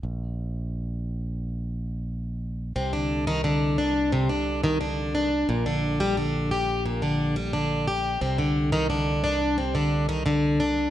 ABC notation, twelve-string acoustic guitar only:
X:1
M:4/4
L:1/16
Q:1/4=88
K:Cm
V:1 name="Twelve-string acoustic guitar" clef=bass
z16 | C, D,2 E, D,2 D2 C, D,2 E, D,2 D2 | B,, D,2 G, D,2 G2 B,, D,2 G, D,2 G2 | C, D,2 E, D,2 D2 C, D,2 E, D,2 D2 |]